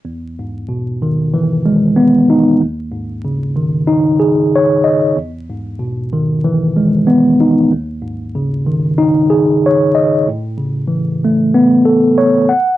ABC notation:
X:1
M:4/4
L:1/8
Q:"Swing 16ths" 1/4=94
K:E
V:1 name="Tine electric piano" clef=bass
E,, G,, B,, D, E, G, B, D | D,, G,, C, D, D G c d | E,, G,, B,, D, E, G, B, D | D,, G,, C, D, D G c d |
A,, C, E, A, B, A c f |]